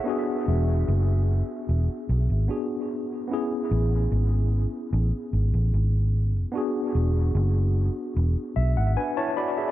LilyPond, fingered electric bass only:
\new Staff \with { instrumentName = "Fingered electric bass" } { \clef bass \time 4/4 \key e \mixolydian \tempo 4 = 74 r8 e,,8 fis,,8. r16 e,,16 r16 b,,16 gis,,16 r4 | r8 a,,8 gis,,8. r16 a,,16 r16 gis,,16 a,,16 gis,,4 | r8 e,,8 fis,,8. r16 e,,16 r16 b,,16 gis,,16 r4 | }